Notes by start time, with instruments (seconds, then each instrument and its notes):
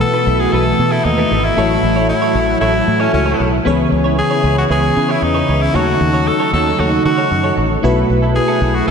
Already playing: fm electric piano B2 E3 A3 F#4 B4, analog polysynth B2 A3 F#4, string machine B2 E3 A3
0.01 tenor saxophone A4, muted clean electric guitar stroke
0.14 clean electric guitar E4 A4 B4
0.26 fingered electric bass B1, clean electric guitar E4 A4 B4
0.40 tenor saxophone G#4, muted clean electric guitar stroke
0.52 fingered electric bass B1, clean electric guitar E4 A4 B4, tenor saxophone A4
0.66 muted clean electric guitar stroke
0.79 fingered electric bass B2, muted clean electric guitar stroke
0.91 tenor saxophone E4, clean electric guitar E4 A4 B4
1.05 fingered electric bass D#2, tenor saxophone D#4, muted clean electric guitar stroke
1.18 clean electric guitar E4 A4 B4
1.30 fingered electric bass G#1, clean electric guitar E4 A4 B4
1.44 tenor saxophone E4, muted clean electric guitar stroke
1.56 fingered electric bass A1, fm electric piano A2 A3 E4 F#4 C#5, string machine E3 F#4, analog polysynth F#3 E4 A4, clean electric guitar E4 A4 C#5
1.83 fingered electric bass A1, muted clean electric guitar stroke
1.96 clean electric guitar E4 A4 C#5
2.09 tenor saxophone E4, muted clean electric guitar stroke
2.22 clean electric guitar E4 A4 C#5
2.35 fingered electric bass A1, clean electric guitar E4 A4 C#5
2.48 muted clean electric guitar stroke
2.60 fingered electric bass A1, clean electric guitar E4 A4 C#5, tenor saxophone E4
2.74 muted clean electric guitar stroke
2.87 fingered electric bass A2, muted clean electric guitar stroke
3.00 tenor saxophone C#4, clean electric guitar E4 A4 C#5
3.13 fingered electric bass C#2, fm electric piano A3 E4 F#4 A4, tenor saxophone C#4, muted clean electric guitar stroke
3.26 clean electric guitar E4 A4 C#5
3.39 fingered electric bass B1, clean electric guitar E4 A4 C#5
3.53 muted clean electric guitar stroke
3.65 fingered electric bass C#2, fm electric piano C#3 E3 B3 G#4 C#5, string machine C#3 E3 B3, analog polysynth E3 C#4 G#4, clean electric guitar E4 B4 C#5
3.91 fingered electric bass C#2, muted clean electric guitar stroke
4.04 clean electric guitar E4 B4 C#5
4.17 tenor saxophone G#4, muted clean electric guitar stroke
4.30 clean electric guitar E4 B4 C#5
4.43 fingered electric bass C#2, clean electric guitar E4 B4 C#5
4.57 tenor saxophone F#4, muted clean electric guitar stroke
4.70 fingered electric bass C#2, clean electric guitar E4 B4 C#5, tenor saxophone G#4
4.83 muted clean electric guitar stroke
4.96 fingered electric bass C#3, muted clean electric guitar stroke
5.09 clean electric guitar E4 B4 C#5, tenor saxophone E4
5.22 fingered electric bass E2, tenor saxophone D#4, muted clean electric guitar stroke
5.34 clean electric guitar E4 B4 C#5
5.48 fingered electric bass C#2, clean electric guitar E4 B4 C#5
5.61 tenor saxophone E4, muted clean electric guitar stroke
5.73 fingered electric bass D#2, fm electric piano D#3 A3 D#4 F#4 C#5, string machine F#3 D#4, analog polysynth F#3 D#4 A4, clean electric guitar F#4 A4 C#5, tenor saxophone F#4
6.01 fingered electric bass D#2, muted clean electric guitar stroke
6.14 clean electric guitar F#4 A4 C#5
6.27 tenor saxophone A4, muted clean electric guitar stroke
6.40 clean electric guitar F#4 A4 C#5
6.53 fingered electric bass D#2, clean electric guitar F#4 A4 C#5, tenor saxophone A4
6.66 muted clean electric guitar stroke
6.78 fingered electric bass D#2, clean electric guitar F#4 A4 C#5, tenor saxophone F#4
6.92 muted clean electric guitar stroke
7.05 fingered electric bass D#3, tenor saxophone F#4, muted clean electric guitar stroke
7.18 clean electric guitar F#4 A4 C#5
7.31 fingered electric bass F#2, muted clean electric guitar stroke
7.44 clean electric guitar F#4 A4 C#5
7.57 fingered electric bass A1, clean electric guitar F#4 A4 C#5
7.70 muted clean electric guitar stroke
7.82 fingered electric bass B1, fm electric piano B2 A3 E4 F#4 B4, string machine B2 A3 E4, analog polysynth F#3 E4 B4, clean electric guitar B3 E4 A4
8.09 fingered electric bass B1, muted clean electric guitar stroke
8.22 clean electric guitar B3 E4 A4
8.35 tenor saxophone G#4, muted clean electric guitar stroke
8.48 clean electric guitar B3 E4 A4
8.61 fingered electric bass B1, clean electric guitar B3 E4 A4
8.74 tenor saxophone F#4, muted clean electric guitar stroke
8.87 fingered electric bass B1, clean electric guitar B3, tenor saxophone A4